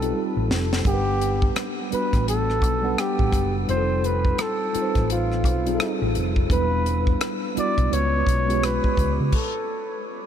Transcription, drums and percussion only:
0, 0, Header, 1, 2, 480
1, 0, Start_track
1, 0, Tempo, 705882
1, 580, Time_signature, 4, 2, 24, 8
1, 6980, End_track
2, 0, Start_track
2, 0, Title_t, "Drums"
2, 16, Note_on_c, 9, 42, 42
2, 84, Note_off_c, 9, 42, 0
2, 346, Note_on_c, 9, 38, 70
2, 414, Note_off_c, 9, 38, 0
2, 495, Note_on_c, 9, 38, 69
2, 563, Note_off_c, 9, 38, 0
2, 578, Note_on_c, 9, 36, 99
2, 586, Note_on_c, 9, 42, 62
2, 646, Note_off_c, 9, 36, 0
2, 654, Note_off_c, 9, 42, 0
2, 826, Note_on_c, 9, 42, 56
2, 894, Note_off_c, 9, 42, 0
2, 966, Note_on_c, 9, 36, 78
2, 1034, Note_off_c, 9, 36, 0
2, 1060, Note_on_c, 9, 42, 65
2, 1064, Note_on_c, 9, 37, 98
2, 1128, Note_off_c, 9, 42, 0
2, 1132, Note_off_c, 9, 37, 0
2, 1306, Note_on_c, 9, 42, 60
2, 1374, Note_off_c, 9, 42, 0
2, 1449, Note_on_c, 9, 36, 70
2, 1451, Note_on_c, 9, 42, 39
2, 1456, Note_on_c, 9, 37, 29
2, 1517, Note_off_c, 9, 36, 0
2, 1519, Note_off_c, 9, 42, 0
2, 1524, Note_off_c, 9, 37, 0
2, 1552, Note_on_c, 9, 42, 76
2, 1620, Note_off_c, 9, 42, 0
2, 1698, Note_on_c, 9, 37, 32
2, 1766, Note_off_c, 9, 37, 0
2, 1780, Note_on_c, 9, 36, 75
2, 1792, Note_on_c, 9, 42, 68
2, 1848, Note_off_c, 9, 36, 0
2, 1860, Note_off_c, 9, 42, 0
2, 2029, Note_on_c, 9, 37, 96
2, 2031, Note_on_c, 9, 42, 64
2, 2097, Note_off_c, 9, 37, 0
2, 2099, Note_off_c, 9, 42, 0
2, 2170, Note_on_c, 9, 36, 70
2, 2238, Note_off_c, 9, 36, 0
2, 2261, Note_on_c, 9, 36, 90
2, 2267, Note_on_c, 9, 42, 55
2, 2268, Note_on_c, 9, 37, 32
2, 2329, Note_off_c, 9, 36, 0
2, 2335, Note_off_c, 9, 42, 0
2, 2336, Note_off_c, 9, 37, 0
2, 2508, Note_on_c, 9, 42, 54
2, 2576, Note_off_c, 9, 42, 0
2, 2749, Note_on_c, 9, 42, 54
2, 2817, Note_off_c, 9, 42, 0
2, 2888, Note_on_c, 9, 36, 72
2, 2956, Note_off_c, 9, 36, 0
2, 2982, Note_on_c, 9, 42, 68
2, 2985, Note_on_c, 9, 37, 106
2, 3050, Note_off_c, 9, 42, 0
2, 3053, Note_off_c, 9, 37, 0
2, 3227, Note_on_c, 9, 42, 61
2, 3295, Note_off_c, 9, 42, 0
2, 3367, Note_on_c, 9, 42, 38
2, 3368, Note_on_c, 9, 36, 70
2, 3373, Note_on_c, 9, 37, 30
2, 3435, Note_off_c, 9, 42, 0
2, 3436, Note_off_c, 9, 36, 0
2, 3441, Note_off_c, 9, 37, 0
2, 3468, Note_on_c, 9, 42, 72
2, 3536, Note_off_c, 9, 42, 0
2, 3615, Note_on_c, 9, 37, 31
2, 3683, Note_off_c, 9, 37, 0
2, 3699, Note_on_c, 9, 36, 77
2, 3709, Note_on_c, 9, 42, 71
2, 3767, Note_off_c, 9, 36, 0
2, 3777, Note_off_c, 9, 42, 0
2, 3852, Note_on_c, 9, 42, 41
2, 3920, Note_off_c, 9, 42, 0
2, 3944, Note_on_c, 9, 37, 99
2, 3946, Note_on_c, 9, 42, 65
2, 4012, Note_off_c, 9, 37, 0
2, 4014, Note_off_c, 9, 42, 0
2, 4183, Note_on_c, 9, 42, 53
2, 4251, Note_off_c, 9, 42, 0
2, 4326, Note_on_c, 9, 36, 75
2, 4394, Note_off_c, 9, 36, 0
2, 4419, Note_on_c, 9, 36, 96
2, 4427, Note_on_c, 9, 42, 58
2, 4487, Note_off_c, 9, 36, 0
2, 4495, Note_off_c, 9, 42, 0
2, 4666, Note_on_c, 9, 42, 56
2, 4734, Note_off_c, 9, 42, 0
2, 4807, Note_on_c, 9, 36, 74
2, 4875, Note_off_c, 9, 36, 0
2, 4901, Note_on_c, 9, 42, 69
2, 4905, Note_on_c, 9, 37, 103
2, 4969, Note_off_c, 9, 42, 0
2, 4973, Note_off_c, 9, 37, 0
2, 5148, Note_on_c, 9, 42, 60
2, 5216, Note_off_c, 9, 42, 0
2, 5289, Note_on_c, 9, 36, 70
2, 5293, Note_on_c, 9, 42, 38
2, 5357, Note_off_c, 9, 36, 0
2, 5361, Note_off_c, 9, 42, 0
2, 5392, Note_on_c, 9, 42, 78
2, 5460, Note_off_c, 9, 42, 0
2, 5621, Note_on_c, 9, 36, 71
2, 5634, Note_on_c, 9, 42, 68
2, 5689, Note_off_c, 9, 36, 0
2, 5702, Note_off_c, 9, 42, 0
2, 5780, Note_on_c, 9, 42, 43
2, 5848, Note_off_c, 9, 42, 0
2, 5872, Note_on_c, 9, 37, 90
2, 5873, Note_on_c, 9, 42, 61
2, 5940, Note_off_c, 9, 37, 0
2, 5941, Note_off_c, 9, 42, 0
2, 6011, Note_on_c, 9, 36, 73
2, 6079, Note_off_c, 9, 36, 0
2, 6102, Note_on_c, 9, 36, 87
2, 6111, Note_on_c, 9, 42, 60
2, 6170, Note_off_c, 9, 36, 0
2, 6179, Note_off_c, 9, 42, 0
2, 6341, Note_on_c, 9, 36, 87
2, 6342, Note_on_c, 9, 49, 76
2, 6409, Note_off_c, 9, 36, 0
2, 6410, Note_off_c, 9, 49, 0
2, 6980, End_track
0, 0, End_of_file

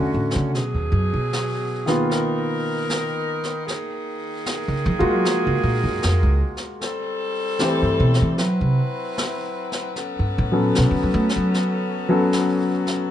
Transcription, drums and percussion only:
0, 0, Header, 1, 2, 480
1, 0, Start_track
1, 0, Tempo, 785340
1, 335, Time_signature, 4, 2, 24, 8
1, 8012, End_track
2, 0, Start_track
2, 0, Title_t, "Drums"
2, 187, Note_on_c, 9, 38, 27
2, 248, Note_off_c, 9, 38, 0
2, 334, Note_on_c, 9, 25, 37
2, 334, Note_on_c, 9, 38, 31
2, 395, Note_off_c, 9, 38, 0
2, 813, Note_on_c, 9, 38, 51
2, 874, Note_off_c, 9, 38, 0
2, 1143, Note_on_c, 9, 38, 31
2, 1204, Note_off_c, 9, 38, 0
2, 1290, Note_off_c, 9, 25, 0
2, 1290, Note_on_c, 9, 25, 49
2, 1290, Note_on_c, 9, 38, 37
2, 1352, Note_off_c, 9, 38, 0
2, 1770, Note_on_c, 9, 38, 51
2, 1831, Note_off_c, 9, 38, 0
2, 2099, Note_on_c, 9, 38, 28
2, 2160, Note_off_c, 9, 38, 0
2, 2249, Note_off_c, 9, 25, 0
2, 2249, Note_on_c, 9, 25, 45
2, 2249, Note_on_c, 9, 38, 33
2, 2310, Note_off_c, 9, 38, 0
2, 2726, Note_on_c, 9, 38, 47
2, 2788, Note_off_c, 9, 38, 0
2, 3209, Note_off_c, 9, 25, 0
2, 3209, Note_on_c, 9, 25, 44
2, 3209, Note_on_c, 9, 38, 42
2, 3270, Note_off_c, 9, 38, 0
2, 3683, Note_on_c, 9, 38, 47
2, 3744, Note_off_c, 9, 38, 0
2, 4015, Note_on_c, 9, 38, 31
2, 4076, Note_off_c, 9, 38, 0
2, 4164, Note_off_c, 9, 25, 0
2, 4164, Note_on_c, 9, 25, 49
2, 4164, Note_on_c, 9, 38, 36
2, 4225, Note_off_c, 9, 38, 0
2, 4639, Note_on_c, 9, 38, 52
2, 4700, Note_off_c, 9, 38, 0
2, 4974, Note_on_c, 9, 38, 32
2, 5035, Note_off_c, 9, 38, 0
2, 5122, Note_off_c, 9, 25, 0
2, 5122, Note_on_c, 9, 25, 40
2, 5122, Note_on_c, 9, 38, 42
2, 5183, Note_off_c, 9, 38, 0
2, 5610, Note_on_c, 9, 38, 52
2, 5671, Note_off_c, 9, 38, 0
2, 5939, Note_on_c, 9, 38, 31
2, 6000, Note_off_c, 9, 38, 0
2, 6087, Note_off_c, 9, 25, 0
2, 6087, Note_on_c, 9, 25, 36
2, 6087, Note_on_c, 9, 38, 34
2, 6148, Note_off_c, 9, 38, 0
2, 6571, Note_on_c, 9, 38, 54
2, 6632, Note_off_c, 9, 38, 0
2, 6901, Note_on_c, 9, 38, 34
2, 6962, Note_off_c, 9, 38, 0
2, 7054, Note_off_c, 9, 25, 0
2, 7054, Note_on_c, 9, 25, 44
2, 7054, Note_on_c, 9, 38, 41
2, 7115, Note_off_c, 9, 38, 0
2, 7535, Note_on_c, 9, 38, 56
2, 7596, Note_off_c, 9, 38, 0
2, 7864, Note_on_c, 9, 38, 33
2, 7925, Note_off_c, 9, 38, 0
2, 8012, Note_off_c, 9, 25, 0
2, 8012, End_track
0, 0, End_of_file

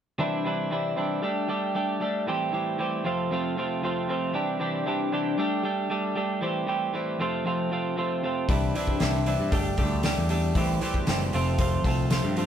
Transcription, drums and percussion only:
0, 0, Header, 1, 2, 480
1, 0, Start_track
1, 0, Key_signature, 0, "major"
1, 0, Tempo, 518583
1, 174, Time_signature, 4, 2, 24, 8
1, 11533, End_track
2, 0, Start_track
2, 0, Title_t, "Drums"
2, 7855, Note_on_c, 9, 36, 91
2, 7859, Note_on_c, 9, 46, 50
2, 7948, Note_off_c, 9, 36, 0
2, 7951, Note_off_c, 9, 46, 0
2, 8102, Note_on_c, 9, 46, 43
2, 8195, Note_off_c, 9, 46, 0
2, 8214, Note_on_c, 9, 36, 64
2, 8307, Note_off_c, 9, 36, 0
2, 8330, Note_on_c, 9, 46, 53
2, 8334, Note_on_c, 9, 38, 89
2, 8422, Note_off_c, 9, 46, 0
2, 8427, Note_off_c, 9, 38, 0
2, 8572, Note_on_c, 9, 46, 42
2, 8665, Note_off_c, 9, 46, 0
2, 8811, Note_on_c, 9, 46, 57
2, 8813, Note_on_c, 9, 36, 93
2, 8904, Note_off_c, 9, 46, 0
2, 8905, Note_off_c, 9, 36, 0
2, 9047, Note_on_c, 9, 46, 45
2, 9051, Note_on_c, 9, 36, 70
2, 9140, Note_off_c, 9, 46, 0
2, 9143, Note_off_c, 9, 36, 0
2, 9285, Note_on_c, 9, 46, 56
2, 9290, Note_on_c, 9, 38, 88
2, 9378, Note_off_c, 9, 46, 0
2, 9382, Note_off_c, 9, 38, 0
2, 9524, Note_on_c, 9, 46, 43
2, 9617, Note_off_c, 9, 46, 0
2, 9767, Note_on_c, 9, 46, 56
2, 9768, Note_on_c, 9, 36, 86
2, 9859, Note_off_c, 9, 46, 0
2, 9860, Note_off_c, 9, 36, 0
2, 10009, Note_on_c, 9, 46, 43
2, 10102, Note_off_c, 9, 46, 0
2, 10128, Note_on_c, 9, 36, 61
2, 10220, Note_off_c, 9, 36, 0
2, 10244, Note_on_c, 9, 46, 59
2, 10248, Note_on_c, 9, 38, 88
2, 10336, Note_off_c, 9, 46, 0
2, 10341, Note_off_c, 9, 38, 0
2, 10488, Note_on_c, 9, 46, 45
2, 10581, Note_off_c, 9, 46, 0
2, 10723, Note_on_c, 9, 46, 56
2, 10725, Note_on_c, 9, 36, 95
2, 10815, Note_off_c, 9, 46, 0
2, 10818, Note_off_c, 9, 36, 0
2, 10963, Note_on_c, 9, 36, 72
2, 10964, Note_on_c, 9, 46, 43
2, 11056, Note_off_c, 9, 36, 0
2, 11057, Note_off_c, 9, 46, 0
2, 11203, Note_on_c, 9, 46, 57
2, 11208, Note_on_c, 9, 38, 87
2, 11296, Note_off_c, 9, 46, 0
2, 11300, Note_off_c, 9, 38, 0
2, 11444, Note_on_c, 9, 46, 43
2, 11533, Note_off_c, 9, 46, 0
2, 11533, End_track
0, 0, End_of_file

